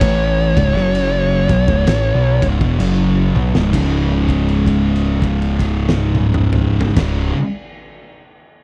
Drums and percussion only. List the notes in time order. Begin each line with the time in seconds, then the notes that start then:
0.01 kick, crash
0.57 kick, crash
0.76 snare
0.95 crash
1.49 kick, crash
1.68 kick
1.87 snare, crash
2.42 kick, crash
2.61 kick
2.80 crash
3.36 high tom
3.55 snare
3.73 kick, crash
4.29 kick, crash
4.49 crash
4.66 kick, crash
4.96 crash
5.22 kick, crash
5.42 crash
5.59 kick, crash
5.89 snare
6.15 high tom
6.34 mid tom
6.53 mid tom
6.81 floor tom
6.96 kick, snare, crash